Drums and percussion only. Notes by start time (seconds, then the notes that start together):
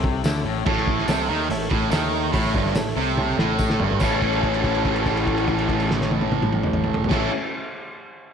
0.04 kick
0.24 snare, open hi-hat, tambourine
0.66 kick, crash
0.78 snare
0.87 kick
0.99 snare
1.08 snare, open hi-hat, tambourine
1.50 open hi-hat
1.71 kick
1.92 snare, open hi-hat, tambourine
2.33 kick, open hi-hat
2.45 snare
2.55 kick
2.66 snare
2.75 snare, open hi-hat, tambourine
3.17 high tom
3.39 snare
3.59 kick, tambourine
3.70 snare
3.80 floor tom
3.91 floor tom
4.00 kick, crash, tambourine
4.22 kick, crash
4.33 crash
4.43 kick, crash
4.54 crash
4.64 kick, crash
4.75 crash
4.85 kick, crash
4.96 crash
5.06 kick, crash
5.17 crash
5.27 kick, crash
5.37 crash
5.48 kick, crash
5.58 crash
5.69 kick, crash
5.80 crash
5.91 snare
6.01 snare
6.11 high tom
6.21 high tom
6.32 high tom
6.42 mid tom
6.53 mid tom
6.63 mid tom
6.73 mid tom
6.84 mid tom
6.94 floor tom
7.04 floor tom
7.11 kick, snare, crash